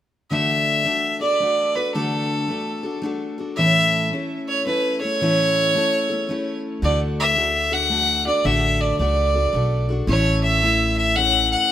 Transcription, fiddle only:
0.31 1.16 E5 medium
1.21 1.77 D5 medium
1.76 1.94 B4 medium
1.95 2.99 A4 medium
3.56 4.07 E5 medium
4.48 4.66 C#5 medium
4.67 4.99 B4 medium
5.01 6.60 C#5 loud
6.85 7.00 D5 medium
7.20 7.75 E5 medium
7.73 8.26 F#5 medium
8.27 8.47 D5 medium
8.46 8.82 E5 medium
8.81 8.98 D5 medium
8.99 9.85 D5 medium
10.09 10.41 C#5 medium
10.43 10.94 E5 medium
10.97 11.18 E5 medium
11.16 11.51 F#5 medium
11.52 11.72 F#5 loud

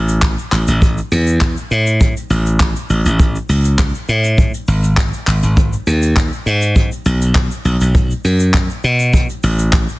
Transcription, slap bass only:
0.00 0.35 A1 loud
0.52 0.63 A1 medium
0.68 0.99 A1 medium
1.12 1.54 E2 loud
1.71 2.14 A2 medium
2.30 2.73 A1 loud
2.90 3.01 A1 medium
3.05 3.37 A1 medium
3.49 3.92 C#2 loud
4.09 4.51 A2 medium
4.68 5.11 G#1 loud
5.27 5.39 G#1 medium
5.43 5.74 G#1 medium
5.87 6.30 D#2 loud
6.46 6.89 G#2 medium
7.06 7.48 B1 loud
7.65 7.76 B1 loud
7.81 8.12 B1 medium
8.24 8.67 F#2 loud
8.84 9.27 B2 loud
9.43 9.86 A1 loud

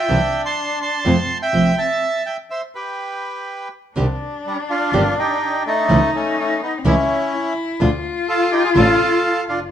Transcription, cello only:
0.00 0.10 F4 medium
0.09 1.07 D4 medium
1.05 1.53 C4 medium
1.54 1.99 C4 medium
3.96 5.90 D4 medium
5.89 6.80 D#4 loud
6.78 6.86 C4 medium
6.85 7.35 C#4 medium
7.33 7.82 E4 loud
7.81 9.71 F4 loud

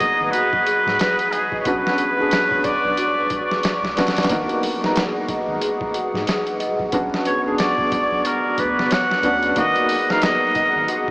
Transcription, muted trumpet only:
0.00 0.33 D#5 loud
0.31 1.33 B4 loud
1.32 1.60 G#4 medium
1.61 1.68 C#5 medium
1.66 2.66 B4 loud
2.65 3.97 D5 loud
7.27 7.42 C#5 medium
7.59 8.28 D5 loud
8.26 8.61 A#4 medium
8.59 8.94 B4 loud
8.93 9.58 F#5 loud
9.58 10.12 D#5 loud
10.10 10.25 F5 loud
10.23 10.89 D#5 loud
10.91 11.11 D#5 medium

